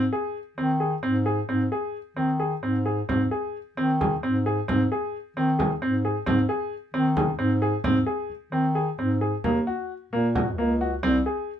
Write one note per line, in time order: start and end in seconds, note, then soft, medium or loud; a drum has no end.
0.13 0.36 G#4 medium
0.58 0.96 D#3 medium
0.58 0.70 C4 medium
0.80 0.92 G#4 medium
1.03 1.41 G#2 medium
1.03 1.15 C4 medium
1.26 1.38 G#4 medium
1.49 1.68 G#2 medium
1.49 1.61 C4 medium
1.72 1.96 G#4 medium
2.17 2.55 D#3 medium
2.17 2.29 C4 medium
2.40 2.52 G#4 medium
2.63 3.02 G#2 medium
2.63 2.75 C4 medium
2.86 2.98 G#4 medium
3.09 3.28 G#2 medium
3.09 3.21 C4 medium
3.09 frame drum soft
3.31 3.56 G#4 medium
3.77 4.16 D#3 medium
3.77 3.90 C4 medium
4.01 4.13 G#4 medium
4.01 frame drum medium
4.23 4.61 G#2 medium
4.23 4.35 C4 medium
4.46 4.58 G#4 medium
4.46 frame drum soft
4.68 4.88 G#2 medium
4.68 4.80 C4 medium
4.68 frame drum soft
4.92 5.16 G#4 medium
5.37 5.74 D#3 medium
5.37 5.49 C4 medium
5.59 5.71 G#4 medium
5.59 frame drum medium
5.82 6.20 G#2 medium
5.82 5.94 C4 medium
6.04 6.16 G#4 medium
6.04 frame drum soft
6.26 6.46 G#2 medium
6.26 6.38 C4 medium
6.26 frame drum medium
6.49 6.73 G#4 medium
6.94 7.32 D#3 medium
6.94 7.06 C4 medium
7.17 7.29 G#4 medium
7.17 frame drum medium
7.39 7.76 G#2 medium
7.39 7.51 C4 medium
7.62 7.74 G#4 medium
7.84 8.03 G#2 medium
7.84 7.96 C4 medium
7.84 frame drum medium
8.06 8.31 G#4 medium
8.30 frame drum soft
8.52 8.91 D#3 medium
8.52 8.64 C4 medium
8.75 8.87 G#4 medium
8.98 9.37 G#2 medium
8.98 9.11 C4 medium
8.98 frame drum soft
9.21 9.33 G#4 medium
9.44 9.63 D#2 medium
9.44 9.56 A#3 medium
9.44 frame drum medium
9.67 9.91 F#4 medium
10.13 10.60 A#2 medium
10.13 10.25 A#3 medium
10.35 10.47 F#4 medium
10.35 frame drum medium
10.58 10.96 C#2 medium
10.58 10.70 A#3 medium
10.81 10.93 F#4 medium
10.81 frame drum soft
11.03 11.22 C2 medium
11.03 11.15 C4 medium
11.03 frame drum soft
11.26 11.50 G#4 medium